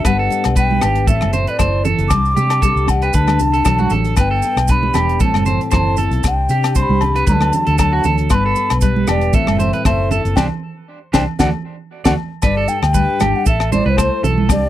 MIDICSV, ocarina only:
0, 0, Header, 1, 2, 480
1, 0, Start_track
1, 0, Key_signature, 1, "major"
1, 0, Tempo, 515907
1, 47, Time_signature, 4, 2, 24, 8
1, 13669, End_track
2, 0, Start_track
2, 0, Title_t, "Ocarina"
2, 0, Program_c, 0, 79
2, 62, Note_on_c, 0, 78, 82
2, 532, Note_off_c, 0, 78, 0
2, 537, Note_on_c, 0, 79, 83
2, 979, Note_off_c, 0, 79, 0
2, 1008, Note_on_c, 0, 76, 71
2, 1362, Note_off_c, 0, 76, 0
2, 1362, Note_on_c, 0, 76, 65
2, 1395, Note_on_c, 0, 74, 71
2, 1404, Note_off_c, 0, 76, 0
2, 1719, Note_off_c, 0, 74, 0
2, 1937, Note_on_c, 0, 86, 98
2, 2694, Note_on_c, 0, 78, 82
2, 2708, Note_off_c, 0, 86, 0
2, 2828, Note_on_c, 0, 79, 75
2, 2842, Note_off_c, 0, 78, 0
2, 2931, Note_on_c, 0, 81, 75
2, 2945, Note_off_c, 0, 79, 0
2, 3648, Note_off_c, 0, 81, 0
2, 3904, Note_on_c, 0, 79, 83
2, 4381, Note_on_c, 0, 83, 86
2, 4395, Note_off_c, 0, 79, 0
2, 4853, Note_off_c, 0, 83, 0
2, 4871, Note_on_c, 0, 81, 81
2, 5305, Note_off_c, 0, 81, 0
2, 5343, Note_on_c, 0, 82, 79
2, 5378, Note_on_c, 0, 81, 86
2, 5387, Note_off_c, 0, 82, 0
2, 5679, Note_off_c, 0, 81, 0
2, 5832, Note_on_c, 0, 79, 77
2, 6266, Note_off_c, 0, 79, 0
2, 6301, Note_on_c, 0, 84, 77
2, 6347, Note_on_c, 0, 83, 84
2, 6356, Note_off_c, 0, 84, 0
2, 6740, Note_off_c, 0, 83, 0
2, 6775, Note_on_c, 0, 82, 79
2, 6816, Note_on_c, 0, 81, 86
2, 6826, Note_off_c, 0, 82, 0
2, 7217, Note_off_c, 0, 81, 0
2, 7248, Note_on_c, 0, 82, 74
2, 7280, Note_on_c, 0, 81, 80
2, 7289, Note_off_c, 0, 82, 0
2, 7591, Note_off_c, 0, 81, 0
2, 7724, Note_on_c, 0, 84, 75
2, 7764, Note_on_c, 0, 83, 81
2, 7773, Note_off_c, 0, 84, 0
2, 8163, Note_off_c, 0, 83, 0
2, 8467, Note_on_c, 0, 74, 75
2, 8697, Note_on_c, 0, 76, 82
2, 8711, Note_off_c, 0, 74, 0
2, 9159, Note_off_c, 0, 76, 0
2, 9165, Note_on_c, 0, 76, 89
2, 9510, Note_off_c, 0, 76, 0
2, 9636, Note_on_c, 0, 79, 82
2, 9724, Note_off_c, 0, 79, 0
2, 10365, Note_on_c, 0, 79, 86
2, 10449, Note_off_c, 0, 79, 0
2, 10602, Note_on_c, 0, 78, 85
2, 10687, Note_off_c, 0, 78, 0
2, 11219, Note_on_c, 0, 78, 88
2, 11289, Note_off_c, 0, 78, 0
2, 11566, Note_on_c, 0, 74, 85
2, 11800, Note_on_c, 0, 79, 87
2, 11814, Note_off_c, 0, 74, 0
2, 11923, Note_off_c, 0, 79, 0
2, 11928, Note_on_c, 0, 79, 101
2, 12429, Note_on_c, 0, 78, 93
2, 12443, Note_off_c, 0, 79, 0
2, 12532, Note_off_c, 0, 78, 0
2, 12543, Note_on_c, 0, 76, 82
2, 12758, Note_off_c, 0, 76, 0
2, 12777, Note_on_c, 0, 74, 77
2, 12924, Note_on_c, 0, 72, 76
2, 12938, Note_off_c, 0, 74, 0
2, 13259, Note_off_c, 0, 72, 0
2, 13506, Note_on_c, 0, 74, 87
2, 13669, Note_off_c, 0, 74, 0
2, 13669, End_track
0, 0, End_of_file